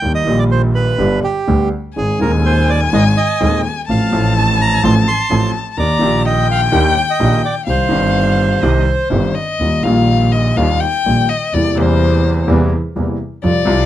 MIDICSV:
0, 0, Header, 1, 5, 480
1, 0, Start_track
1, 0, Key_signature, -3, "minor"
1, 0, Tempo, 482315
1, 29, Time_signature, 4, 2, 24, 8
1, 3870, Tempo, 472441
1, 8190, Tempo, 485437
1, 9633, Key_signature, -3, "major"
1, 11070, Tempo, 474684
1, 13905, End_track
2, 0, Start_track
2, 0, Title_t, "Violin"
2, 0, Program_c, 0, 40
2, 1950, Note_on_c, 0, 80, 93
2, 3828, Note_off_c, 0, 80, 0
2, 3865, Note_on_c, 0, 81, 88
2, 5722, Note_off_c, 0, 81, 0
2, 5722, Note_on_c, 0, 81, 77
2, 5791, Note_on_c, 0, 82, 92
2, 5807, Note_off_c, 0, 81, 0
2, 6276, Note_on_c, 0, 79, 106
2, 6291, Note_off_c, 0, 82, 0
2, 7701, Note_off_c, 0, 79, 0
2, 7707, Note_on_c, 0, 77, 85
2, 8669, Note_on_c, 0, 75, 66
2, 8684, Note_off_c, 0, 77, 0
2, 8900, Note_off_c, 0, 75, 0
2, 8906, Note_on_c, 0, 72, 73
2, 9386, Note_on_c, 0, 75, 77
2, 9401, Note_off_c, 0, 72, 0
2, 9866, Note_on_c, 0, 77, 76
2, 9881, Note_off_c, 0, 75, 0
2, 10345, Note_on_c, 0, 75, 75
2, 10360, Note_off_c, 0, 77, 0
2, 10590, Note_on_c, 0, 77, 81
2, 10605, Note_off_c, 0, 75, 0
2, 10825, Note_on_c, 0, 79, 95
2, 10840, Note_off_c, 0, 77, 0
2, 11311, Note_on_c, 0, 75, 79
2, 11327, Note_off_c, 0, 79, 0
2, 11560, Note_on_c, 0, 74, 87
2, 11575, Note_off_c, 0, 75, 0
2, 11799, Note_on_c, 0, 72, 83
2, 11814, Note_off_c, 0, 74, 0
2, 12522, Note_off_c, 0, 72, 0
2, 13484, Note_on_c, 0, 74, 91
2, 13905, Note_off_c, 0, 74, 0
2, 13905, End_track
3, 0, Start_track
3, 0, Title_t, "Bandoneon"
3, 0, Program_c, 1, 23
3, 0, Note_on_c, 1, 79, 94
3, 124, Note_off_c, 1, 79, 0
3, 147, Note_on_c, 1, 75, 93
3, 387, Note_on_c, 1, 74, 79
3, 392, Note_off_c, 1, 75, 0
3, 440, Note_off_c, 1, 74, 0
3, 509, Note_on_c, 1, 72, 81
3, 616, Note_off_c, 1, 72, 0
3, 744, Note_on_c, 1, 71, 83
3, 1191, Note_off_c, 1, 71, 0
3, 1233, Note_on_c, 1, 67, 66
3, 1681, Note_off_c, 1, 67, 0
3, 1966, Note_on_c, 1, 68, 68
3, 2186, Note_off_c, 1, 68, 0
3, 2201, Note_on_c, 1, 70, 66
3, 2308, Note_off_c, 1, 70, 0
3, 2444, Note_on_c, 1, 72, 80
3, 2686, Note_on_c, 1, 74, 84
3, 2688, Note_off_c, 1, 72, 0
3, 2792, Note_off_c, 1, 74, 0
3, 2924, Note_on_c, 1, 75, 92
3, 3030, Note_off_c, 1, 75, 0
3, 3155, Note_on_c, 1, 75, 89
3, 3598, Note_off_c, 1, 75, 0
3, 3886, Note_on_c, 1, 77, 67
3, 4329, Note_off_c, 1, 77, 0
3, 4367, Note_on_c, 1, 81, 91
3, 4584, Note_off_c, 1, 81, 0
3, 4606, Note_on_c, 1, 82, 96
3, 4824, Note_off_c, 1, 82, 0
3, 4840, Note_on_c, 1, 84, 86
3, 4947, Note_off_c, 1, 84, 0
3, 5077, Note_on_c, 1, 84, 89
3, 5522, Note_off_c, 1, 84, 0
3, 5803, Note_on_c, 1, 74, 82
3, 6246, Note_off_c, 1, 74, 0
3, 6280, Note_on_c, 1, 75, 84
3, 6500, Note_off_c, 1, 75, 0
3, 6535, Note_on_c, 1, 77, 85
3, 6637, Note_off_c, 1, 77, 0
3, 6780, Note_on_c, 1, 79, 87
3, 6988, Note_off_c, 1, 79, 0
3, 7006, Note_on_c, 1, 79, 89
3, 7056, Note_off_c, 1, 79, 0
3, 7136, Note_on_c, 1, 75, 78
3, 7458, Note_off_c, 1, 75, 0
3, 7491, Note_on_c, 1, 74, 74
3, 7594, Note_off_c, 1, 74, 0
3, 7738, Note_on_c, 1, 72, 74
3, 9125, Note_off_c, 1, 72, 0
3, 13905, End_track
4, 0, Start_track
4, 0, Title_t, "Upright piano"
4, 0, Program_c, 2, 0
4, 21, Note_on_c, 2, 51, 55
4, 21, Note_on_c, 2, 55, 37
4, 23, Note_on_c, 2, 39, 53
4, 23, Note_on_c, 2, 58, 41
4, 28, Note_on_c, 2, 67, 45
4, 224, Note_off_c, 2, 39, 0
4, 224, Note_off_c, 2, 55, 0
4, 225, Note_off_c, 2, 58, 0
4, 226, Note_off_c, 2, 51, 0
4, 227, Note_off_c, 2, 67, 0
4, 245, Note_on_c, 2, 51, 59
4, 262, Note_on_c, 2, 55, 53
4, 267, Note_on_c, 2, 46, 72
4, 269, Note_on_c, 2, 34, 70
4, 273, Note_on_c, 2, 58, 53
4, 287, Note_on_c, 2, 67, 66
4, 937, Note_off_c, 2, 51, 0
4, 946, Note_off_c, 2, 55, 0
4, 949, Note_off_c, 2, 34, 0
4, 949, Note_off_c, 2, 46, 0
4, 951, Note_off_c, 2, 58, 0
4, 958, Note_off_c, 2, 67, 0
4, 979, Note_on_c, 2, 50, 68
4, 982, Note_on_c, 2, 55, 60
4, 983, Note_on_c, 2, 31, 76
4, 986, Note_on_c, 2, 43, 69
4, 987, Note_on_c, 2, 67, 68
4, 988, Note_on_c, 2, 59, 55
4, 1184, Note_off_c, 2, 50, 0
4, 1185, Note_off_c, 2, 55, 0
4, 1186, Note_off_c, 2, 31, 0
4, 1187, Note_off_c, 2, 43, 0
4, 1188, Note_off_c, 2, 59, 0
4, 1188, Note_off_c, 2, 67, 0
4, 1466, Note_on_c, 2, 50, 62
4, 1469, Note_on_c, 2, 55, 57
4, 1471, Note_on_c, 2, 38, 73
4, 1471, Note_on_c, 2, 59, 55
4, 1473, Note_on_c, 2, 67, 66
4, 1673, Note_off_c, 2, 50, 0
4, 1673, Note_off_c, 2, 55, 0
4, 1674, Note_off_c, 2, 38, 0
4, 1674, Note_off_c, 2, 59, 0
4, 1675, Note_off_c, 2, 67, 0
4, 1952, Note_on_c, 2, 51, 36
4, 1954, Note_on_c, 2, 44, 44
4, 1954, Note_on_c, 2, 56, 38
4, 1956, Note_on_c, 2, 32, 54
4, 1956, Note_on_c, 2, 60, 40
4, 1958, Note_on_c, 2, 68, 41
4, 2157, Note_off_c, 2, 51, 0
4, 2158, Note_off_c, 2, 44, 0
4, 2158, Note_off_c, 2, 56, 0
4, 2159, Note_off_c, 2, 32, 0
4, 2159, Note_off_c, 2, 60, 0
4, 2160, Note_off_c, 2, 68, 0
4, 2186, Note_on_c, 2, 51, 63
4, 2197, Note_on_c, 2, 56, 55
4, 2202, Note_on_c, 2, 27, 66
4, 2204, Note_on_c, 2, 39, 71
4, 2208, Note_on_c, 2, 60, 50
4, 2222, Note_on_c, 2, 68, 60
4, 2876, Note_off_c, 2, 51, 0
4, 2881, Note_off_c, 2, 56, 0
4, 2884, Note_off_c, 2, 27, 0
4, 2885, Note_off_c, 2, 39, 0
4, 2887, Note_off_c, 2, 60, 0
4, 2894, Note_off_c, 2, 68, 0
4, 2914, Note_on_c, 2, 44, 78
4, 2915, Note_on_c, 2, 32, 80
4, 2915, Note_on_c, 2, 51, 68
4, 2918, Note_on_c, 2, 56, 63
4, 2920, Note_on_c, 2, 60, 62
4, 2921, Note_on_c, 2, 68, 71
4, 3116, Note_off_c, 2, 44, 0
4, 3117, Note_off_c, 2, 32, 0
4, 3117, Note_off_c, 2, 51, 0
4, 3118, Note_off_c, 2, 56, 0
4, 3120, Note_off_c, 2, 60, 0
4, 3120, Note_off_c, 2, 68, 0
4, 3387, Note_on_c, 2, 56, 57
4, 3388, Note_on_c, 2, 51, 57
4, 3389, Note_on_c, 2, 39, 68
4, 3390, Note_on_c, 2, 60, 61
4, 3391, Note_on_c, 2, 27, 75
4, 3393, Note_on_c, 2, 68, 70
4, 3590, Note_off_c, 2, 56, 0
4, 3591, Note_off_c, 2, 39, 0
4, 3591, Note_off_c, 2, 51, 0
4, 3592, Note_off_c, 2, 27, 0
4, 3592, Note_off_c, 2, 60, 0
4, 3593, Note_off_c, 2, 68, 0
4, 3870, Note_on_c, 2, 53, 42
4, 3872, Note_on_c, 2, 57, 41
4, 3873, Note_on_c, 2, 33, 53
4, 3874, Note_on_c, 2, 45, 48
4, 3877, Note_on_c, 2, 60, 39
4, 3877, Note_on_c, 2, 69, 49
4, 4073, Note_off_c, 2, 53, 0
4, 4075, Note_off_c, 2, 57, 0
4, 4076, Note_off_c, 2, 33, 0
4, 4076, Note_off_c, 2, 45, 0
4, 4077, Note_off_c, 2, 60, 0
4, 4078, Note_off_c, 2, 69, 0
4, 4088, Note_on_c, 2, 53, 59
4, 4102, Note_on_c, 2, 57, 57
4, 4109, Note_on_c, 2, 45, 85
4, 4112, Note_on_c, 2, 33, 74
4, 4116, Note_on_c, 2, 60, 55
4, 4128, Note_on_c, 2, 69, 74
4, 4785, Note_off_c, 2, 53, 0
4, 4793, Note_off_c, 2, 57, 0
4, 4796, Note_off_c, 2, 45, 0
4, 4797, Note_off_c, 2, 33, 0
4, 4799, Note_off_c, 2, 60, 0
4, 4805, Note_off_c, 2, 69, 0
4, 4829, Note_on_c, 2, 33, 83
4, 4829, Note_on_c, 2, 53, 72
4, 4830, Note_on_c, 2, 45, 77
4, 4832, Note_on_c, 2, 57, 62
4, 4833, Note_on_c, 2, 60, 61
4, 4834, Note_on_c, 2, 69, 74
4, 5032, Note_off_c, 2, 33, 0
4, 5033, Note_off_c, 2, 45, 0
4, 5033, Note_off_c, 2, 53, 0
4, 5034, Note_off_c, 2, 57, 0
4, 5035, Note_off_c, 2, 60, 0
4, 5035, Note_off_c, 2, 69, 0
4, 5306, Note_on_c, 2, 53, 66
4, 5308, Note_on_c, 2, 45, 79
4, 5308, Note_on_c, 2, 57, 63
4, 5309, Note_on_c, 2, 33, 76
4, 5309, Note_on_c, 2, 60, 60
4, 5311, Note_on_c, 2, 69, 66
4, 5511, Note_off_c, 2, 53, 0
4, 5512, Note_off_c, 2, 45, 0
4, 5512, Note_off_c, 2, 57, 0
4, 5513, Note_off_c, 2, 33, 0
4, 5513, Note_off_c, 2, 60, 0
4, 5514, Note_off_c, 2, 69, 0
4, 5785, Note_on_c, 2, 51, 59
4, 5790, Note_on_c, 2, 58, 42
4, 5791, Note_on_c, 2, 39, 53
4, 5795, Note_on_c, 2, 62, 41
4, 5798, Note_on_c, 2, 67, 50
4, 5991, Note_off_c, 2, 51, 0
4, 5994, Note_off_c, 2, 39, 0
4, 5994, Note_off_c, 2, 58, 0
4, 5996, Note_off_c, 2, 62, 0
4, 5998, Note_off_c, 2, 67, 0
4, 6007, Note_on_c, 2, 51, 68
4, 6022, Note_on_c, 2, 58, 67
4, 6026, Note_on_c, 2, 46, 76
4, 6028, Note_on_c, 2, 34, 75
4, 6036, Note_on_c, 2, 62, 63
4, 6047, Note_on_c, 2, 67, 78
4, 6702, Note_off_c, 2, 51, 0
4, 6710, Note_off_c, 2, 58, 0
4, 6712, Note_off_c, 2, 46, 0
4, 6713, Note_off_c, 2, 34, 0
4, 6717, Note_off_c, 2, 62, 0
4, 6722, Note_off_c, 2, 67, 0
4, 6747, Note_on_c, 2, 51, 84
4, 6749, Note_on_c, 2, 58, 69
4, 6751, Note_on_c, 2, 39, 85
4, 6752, Note_on_c, 2, 62, 60
4, 6754, Note_on_c, 2, 67, 84
4, 6951, Note_off_c, 2, 39, 0
4, 6951, Note_off_c, 2, 58, 0
4, 6952, Note_off_c, 2, 62, 0
4, 6953, Note_off_c, 2, 51, 0
4, 6953, Note_off_c, 2, 67, 0
4, 7235, Note_on_c, 2, 34, 80
4, 7235, Note_on_c, 2, 46, 81
4, 7235, Note_on_c, 2, 51, 72
4, 7235, Note_on_c, 2, 58, 62
4, 7236, Note_on_c, 2, 62, 62
4, 7236, Note_on_c, 2, 67, 65
4, 7433, Note_off_c, 2, 34, 0
4, 7433, Note_off_c, 2, 46, 0
4, 7433, Note_off_c, 2, 51, 0
4, 7433, Note_off_c, 2, 58, 0
4, 7433, Note_off_c, 2, 62, 0
4, 7434, Note_off_c, 2, 67, 0
4, 7709, Note_on_c, 2, 48, 49
4, 7709, Note_on_c, 2, 51, 39
4, 7711, Note_on_c, 2, 60, 36
4, 7713, Note_on_c, 2, 36, 48
4, 7713, Note_on_c, 2, 55, 41
4, 7716, Note_on_c, 2, 67, 45
4, 7909, Note_off_c, 2, 48, 0
4, 7909, Note_off_c, 2, 51, 0
4, 7910, Note_off_c, 2, 60, 0
4, 7911, Note_off_c, 2, 36, 0
4, 7911, Note_off_c, 2, 55, 0
4, 7913, Note_off_c, 2, 67, 0
4, 7934, Note_on_c, 2, 51, 72
4, 7946, Note_on_c, 2, 55, 64
4, 7950, Note_on_c, 2, 31, 74
4, 7952, Note_on_c, 2, 43, 73
4, 7961, Note_on_c, 2, 60, 56
4, 7970, Note_on_c, 2, 67, 66
4, 8624, Note_off_c, 2, 51, 0
4, 8630, Note_off_c, 2, 55, 0
4, 8632, Note_off_c, 2, 31, 0
4, 8633, Note_off_c, 2, 43, 0
4, 8637, Note_off_c, 2, 60, 0
4, 8641, Note_off_c, 2, 67, 0
4, 8672, Note_on_c, 2, 36, 76
4, 8672, Note_on_c, 2, 48, 82
4, 8672, Note_on_c, 2, 51, 71
4, 8673, Note_on_c, 2, 55, 53
4, 8675, Note_on_c, 2, 60, 55
4, 8676, Note_on_c, 2, 67, 71
4, 8871, Note_off_c, 2, 36, 0
4, 8871, Note_off_c, 2, 48, 0
4, 8871, Note_off_c, 2, 51, 0
4, 8872, Note_off_c, 2, 55, 0
4, 8873, Note_off_c, 2, 60, 0
4, 8873, Note_off_c, 2, 67, 0
4, 9148, Note_on_c, 2, 31, 69
4, 9151, Note_on_c, 2, 51, 63
4, 9152, Note_on_c, 2, 55, 54
4, 9153, Note_on_c, 2, 43, 74
4, 9154, Note_on_c, 2, 60, 55
4, 9155, Note_on_c, 2, 67, 67
4, 9353, Note_off_c, 2, 31, 0
4, 9354, Note_off_c, 2, 51, 0
4, 9355, Note_off_c, 2, 43, 0
4, 9355, Note_off_c, 2, 55, 0
4, 9356, Note_off_c, 2, 60, 0
4, 9356, Note_off_c, 2, 67, 0
4, 9641, Note_on_c, 2, 51, 54
4, 9644, Note_on_c, 2, 55, 43
4, 9644, Note_on_c, 2, 58, 38
4, 9645, Note_on_c, 2, 39, 50
4, 9650, Note_on_c, 2, 65, 45
4, 9840, Note_off_c, 2, 51, 0
4, 9840, Note_off_c, 2, 55, 0
4, 9840, Note_off_c, 2, 58, 0
4, 9841, Note_off_c, 2, 39, 0
4, 9843, Note_off_c, 2, 65, 0
4, 9861, Note_on_c, 2, 51, 64
4, 9876, Note_on_c, 2, 55, 58
4, 9882, Note_on_c, 2, 46, 78
4, 9883, Note_on_c, 2, 34, 72
4, 9889, Note_on_c, 2, 58, 57
4, 9900, Note_on_c, 2, 65, 68
4, 10550, Note_off_c, 2, 51, 0
4, 10558, Note_off_c, 2, 55, 0
4, 10561, Note_off_c, 2, 46, 0
4, 10562, Note_off_c, 2, 34, 0
4, 10564, Note_off_c, 2, 58, 0
4, 10570, Note_off_c, 2, 65, 0
4, 10590, Note_on_c, 2, 51, 73
4, 10595, Note_on_c, 2, 39, 80
4, 10596, Note_on_c, 2, 55, 59
4, 10596, Note_on_c, 2, 58, 58
4, 10599, Note_on_c, 2, 65, 76
4, 10794, Note_off_c, 2, 39, 0
4, 10794, Note_off_c, 2, 51, 0
4, 10795, Note_off_c, 2, 55, 0
4, 10795, Note_off_c, 2, 58, 0
4, 10796, Note_off_c, 2, 65, 0
4, 11077, Note_on_c, 2, 46, 49
4, 11078, Note_on_c, 2, 34, 49
4, 11078, Note_on_c, 2, 51, 45
4, 11078, Note_on_c, 2, 55, 45
4, 11080, Note_on_c, 2, 58, 41
4, 11083, Note_on_c, 2, 65, 45
4, 11278, Note_off_c, 2, 34, 0
4, 11278, Note_off_c, 2, 46, 0
4, 11278, Note_off_c, 2, 51, 0
4, 11278, Note_off_c, 2, 55, 0
4, 11279, Note_off_c, 2, 58, 0
4, 11281, Note_off_c, 2, 65, 0
4, 11559, Note_on_c, 2, 48, 41
4, 11560, Note_on_c, 2, 55, 41
4, 11562, Note_on_c, 2, 52, 51
4, 11563, Note_on_c, 2, 40, 47
4, 11563, Note_on_c, 2, 58, 41
4, 11567, Note_on_c, 2, 64, 51
4, 11760, Note_off_c, 2, 48, 0
4, 11761, Note_off_c, 2, 55, 0
4, 11762, Note_off_c, 2, 52, 0
4, 11762, Note_off_c, 2, 58, 0
4, 11763, Note_off_c, 2, 40, 0
4, 11765, Note_off_c, 2, 64, 0
4, 11776, Note_on_c, 2, 48, 65
4, 11791, Note_on_c, 2, 55, 61
4, 11797, Note_on_c, 2, 52, 76
4, 11799, Note_on_c, 2, 40, 81
4, 11803, Note_on_c, 2, 58, 65
4, 11816, Note_on_c, 2, 64, 66
4, 12474, Note_off_c, 2, 48, 0
4, 12481, Note_off_c, 2, 55, 0
4, 12485, Note_off_c, 2, 40, 0
4, 12485, Note_off_c, 2, 52, 0
4, 12488, Note_off_c, 2, 58, 0
4, 12494, Note_off_c, 2, 64, 0
4, 12506, Note_on_c, 2, 48, 71
4, 12510, Note_on_c, 2, 40, 85
4, 12510, Note_on_c, 2, 55, 68
4, 12511, Note_on_c, 2, 52, 82
4, 12512, Note_on_c, 2, 58, 67
4, 12513, Note_on_c, 2, 64, 78
4, 12715, Note_off_c, 2, 48, 0
4, 12717, Note_off_c, 2, 40, 0
4, 12717, Note_off_c, 2, 55, 0
4, 12718, Note_off_c, 2, 52, 0
4, 12718, Note_off_c, 2, 58, 0
4, 12719, Note_off_c, 2, 64, 0
4, 12996, Note_on_c, 2, 40, 56
4, 12996, Note_on_c, 2, 48, 49
4, 12999, Note_on_c, 2, 52, 54
4, 13000, Note_on_c, 2, 55, 42
4, 13002, Note_on_c, 2, 58, 45
4, 13002, Note_on_c, 2, 64, 52
4, 13197, Note_off_c, 2, 40, 0
4, 13197, Note_off_c, 2, 48, 0
4, 13199, Note_off_c, 2, 52, 0
4, 13199, Note_off_c, 2, 55, 0
4, 13200, Note_off_c, 2, 58, 0
4, 13200, Note_off_c, 2, 64, 0
4, 13475, Note_on_c, 2, 48, 45
4, 13480, Note_on_c, 2, 53, 60
4, 13482, Note_on_c, 2, 65, 58
4, 13483, Note_on_c, 2, 41, 55
4, 13483, Note_on_c, 2, 55, 45
4, 13674, Note_off_c, 2, 48, 0
4, 13678, Note_off_c, 2, 53, 0
4, 13678, Note_off_c, 2, 55, 0
4, 13678, Note_off_c, 2, 65, 0
4, 13679, Note_off_c, 2, 41, 0
4, 13698, Note_on_c, 2, 48, 84
4, 13709, Note_on_c, 2, 53, 69
4, 13715, Note_on_c, 2, 36, 85
4, 13724, Note_on_c, 2, 55, 69
4, 13734, Note_on_c, 2, 65, 84
4, 13905, Note_off_c, 2, 36, 0
4, 13905, Note_off_c, 2, 48, 0
4, 13905, Note_off_c, 2, 53, 0
4, 13905, Note_off_c, 2, 55, 0
4, 13905, Note_off_c, 2, 65, 0
4, 13905, End_track
5, 0, Start_track
5, 0, Title_t, "Double bass"
5, 0, Program_c, 3, 43
5, 28, Note_on_c, 3, 39, 51
5, 227, Note_off_c, 3, 39, 0
5, 268, Note_on_c, 3, 34, 86
5, 949, Note_off_c, 3, 34, 0
5, 984, Note_on_c, 3, 31, 80
5, 1186, Note_off_c, 3, 31, 0
5, 1473, Note_on_c, 3, 38, 71
5, 1675, Note_off_c, 3, 38, 0
5, 1967, Note_on_c, 3, 32, 50
5, 2164, Note_off_c, 3, 32, 0
5, 2204, Note_on_c, 3, 39, 82
5, 2885, Note_off_c, 3, 39, 0
5, 2920, Note_on_c, 3, 32, 80
5, 3119, Note_off_c, 3, 32, 0
5, 3398, Note_on_c, 3, 39, 85
5, 3595, Note_off_c, 3, 39, 0
5, 3870, Note_on_c, 3, 33, 57
5, 4074, Note_off_c, 3, 33, 0
5, 4121, Note_on_c, 3, 33, 94
5, 4802, Note_off_c, 3, 33, 0
5, 4833, Note_on_c, 3, 33, 92
5, 5035, Note_off_c, 3, 33, 0
5, 5307, Note_on_c, 3, 33, 77
5, 5512, Note_off_c, 3, 33, 0
5, 5791, Note_on_c, 3, 39, 53
5, 5994, Note_off_c, 3, 39, 0
5, 6033, Note_on_c, 3, 34, 81
5, 6715, Note_off_c, 3, 34, 0
5, 6754, Note_on_c, 3, 39, 101
5, 6953, Note_off_c, 3, 39, 0
5, 7234, Note_on_c, 3, 34, 83
5, 7433, Note_off_c, 3, 34, 0
5, 7716, Note_on_c, 3, 36, 52
5, 7913, Note_off_c, 3, 36, 0
5, 7948, Note_on_c, 3, 31, 93
5, 8631, Note_off_c, 3, 31, 0
5, 8663, Note_on_c, 3, 36, 90
5, 8867, Note_off_c, 3, 36, 0
5, 9144, Note_on_c, 3, 31, 86
5, 9351, Note_off_c, 3, 31, 0
5, 9627, Note_on_c, 3, 39, 49
5, 9832, Note_off_c, 3, 39, 0
5, 9874, Note_on_c, 3, 34, 90
5, 10557, Note_off_c, 3, 34, 0
5, 10593, Note_on_c, 3, 39, 92
5, 10793, Note_off_c, 3, 39, 0
5, 11073, Note_on_c, 3, 34, 55
5, 11276, Note_off_c, 3, 34, 0
5, 11552, Note_on_c, 3, 40, 55
5, 11757, Note_off_c, 3, 40, 0
5, 11790, Note_on_c, 3, 40, 92
5, 12481, Note_off_c, 3, 40, 0
5, 12526, Note_on_c, 3, 40, 103
5, 12725, Note_off_c, 3, 40, 0
5, 13005, Note_on_c, 3, 40, 57
5, 13202, Note_off_c, 3, 40, 0
5, 13480, Note_on_c, 3, 41, 59
5, 13677, Note_off_c, 3, 41, 0
5, 13717, Note_on_c, 3, 36, 95
5, 13905, Note_off_c, 3, 36, 0
5, 13905, End_track
0, 0, End_of_file